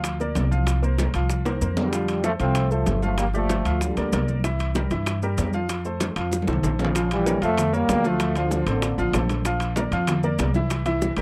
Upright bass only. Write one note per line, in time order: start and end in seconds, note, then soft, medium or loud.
0.00 0.32 D2 medium
0.36 1.08 C2 medium
1.14 1.58 C2 medium
1.61 2.34 F2 medium
2.40 2.83 C2 medium
2.87 3.60 G1 medium
3.65 3.94 D2 medium
3.97 4.11 D2 medium
4.12 4.85 C2 medium
4.91 5.35 G2 medium
5.38 6.11 F2 medium
6.16 6.45 F2 medium
6.47 6.62 C2 medium
6.63 7.36 A#1 medium
7.42 7.85 F2 loud
7.88 8.61 D2 medium
8.66 8.96 A1 medium
8.98 9.13 A1 medium
9.13 9.86 A#1 medium
9.91 10.35 F2 medium
10.39 11.12 C2 medium
11.17 11.22 C2 medium